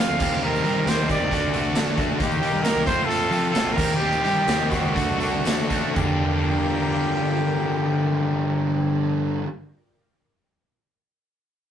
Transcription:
Already playing: A4 F5 G5 C6
0.00 F2 C3 F3 A3 C4 F4
0.09 D2
0.20 D#2 D#3 G3 C4 G4 A#4 D#5, kick, tambourine, crash
0.42 D#3 G3 C4 G4 A#4, tambourine
0.55 tambourine
0.64 G2 D#3 G3 C4 G4, closed hi-hat
0.86 D#2 D#3 G3 C4 G4 C5, snare, closed hi-hat, tambourine
1.00 tambourine
1.09 D#3 G3 C4 G4 D5, kick, closed hi-hat, tambourine
1.19 D#2
1.31 D2 D3 A3 D4 F#4 A4 D5 F#5 D6, kick, closed hi-hat
1.42 C2
1.53 D3 A3 D4 F#4, closed hi-hat, tambourine
1.65 tambourine
1.75 A1 D3 A3 D4 F#4, snare, closed hi-hat, tambourine
1.97 A#1 D3 A3 D4 F#4, kick, closed hi-hat
2.19 D#2 D#3 A#3 D#4 G4 A#4 D#5 G5 C6, kick, closed hi-hat, tambourine
2.32 tambourine
2.41 D#3 A#3 D#4 G4, closed hi-hat
2.53 G2
2.62 D#3 A#3 D#4 G4 A#4, snare, closed hi-hat, tambourine
2.75 C2
2.85 F2 C3 F3 A3 C4 F4 C5 F5, kick, closed hi-hat, tambourine
2.90 A4
3.05 F2 C3 F3 A4
3.09 A3 C4 F4, closed hi-hat
3.30 F2 C3 F3 A3 C4 F4, closed hi-hat, tambourine
3.44 tambourine
3.50 F2 A4
3.54 C3 F3 A3 C4 F4, snare, closed hi-hat, tambourine
3.65 A#1
3.73 D#3 G3 C4 A#4
3.78 D#2 G4 A#4 D#5, kick, tambourine, crash
3.95 G4
4.00 D#3 G3 C4 G4, tambourine
4.12 tambourine
4.23 G2 D#3 G3 C4 G4, closed hi-hat
4.36 tambourine
4.47 D#2 D#3 G3 C4 G4, snare, closed hi-hat, tambourine
4.70 D#3 G3 C4 F#4 G4, kick, closed hi-hat, tambourine
4.83 C#2
4.94 D2 D3 A3 D4 F#4 A4 D5 F#5 D6, kick, closed hi-hat, tambourine
5.07 C2, tambourine
5.19 D3 A3 D4 F#4, closed hi-hat, tambourine
5.44 A1 D3 A3 D4 F#4, snare, closed hi-hat, tambourine
5.69 A1 D3 A3 D4 F#4, kick, closed hi-hat, tambourine
5.95 G1 G2 D3 G3 A#3 D4 F4 G4 A#4 D5 G5, kick, floor tom, tambourine

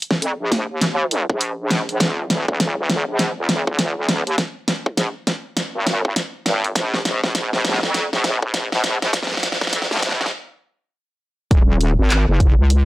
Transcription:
0.02 closed hi-hat
0.11 kick, snare
0.22 F2, closed hi-hat
0.40 A#1
0.52 kick, snare, closed hi-hat
0.70 D#2
0.81 snare, closed hi-hat
1.11 closed hi-hat
1.29 A#1, kick
1.41 closed hi-hat
1.71 snare, closed hi-hat
1.89 closed hi-hat
2.00 D#1, kick, snare, closed hi-hat
2.30 snare, closed hi-hat
2.48 D#1, kick
2.60 snare, closed hi-hat
2.89 snare, closed hi-hat
3.07 A#1
3.19 snare, closed hi-hat
3.37 D#1
3.49 snare, closed hi-hat
3.67 kick
3.79 snare, closed hi-hat
4.08 snare, closed hi-hat
4.26 D#2, closed hi-hat
4.38 kick, snare, closed hi-hat
4.68 snare, closed hi-hat
4.86 kick
4.97 A#1, snare, closed hi-hat
5.27 kick, snare, closed hi-hat
5.57 snare, closed hi-hat
5.75 G#1
5.87 snare, closed hi-hat
6.05 kick
6.16 snare, closed hi-hat
6.45 G#1, snare, closed hi-hat
6.64 closed hi-hat
6.75 A#1, kick, snare, closed hi-hat
6.94 snare
7.05 snare, closed hi-hat
7.24 A#1, kick, snare
7.35 snare, closed hi-hat
7.53 snare
7.65 snare, closed hi-hat
7.69 snare
7.74 snare
7.79 snare
7.83 F2, snare
7.94 snare, closed hi-hat
8.12 A#1, snare
8.24 snare, closed hi-hat
8.43 kick
8.54 snare, closed hi-hat
8.72 snare
8.84 snare, closed hi-hat
9.02 A#1, snare, closed hi-hat
9.13 kick, snare, closed hi-hat
9.23 snare
9.27 snare
9.32 snare
9.35 snare
9.37 snare
9.40 snare
9.43 snare, closed hi-hat
9.48 snare
9.52 snare
9.61 kick, snare
9.67 snare
9.72 F2, snare, closed hi-hat
9.82 snare
9.91 G#1, snare
9.97 snare
10.02 A#1, kick, snare, closed hi-hat
10.09 snare
10.12 snare
10.21 snare
10.26 snare
10.28 snare
11.51 D#1, kick, closed hi-hat
11.81 closed hi-hat
11.99 G#1
12.10 clap, closed hi-hat
12.28 F#1
12.40 kick, closed hi-hat
12.58 C#2
12.70 closed hi-hat

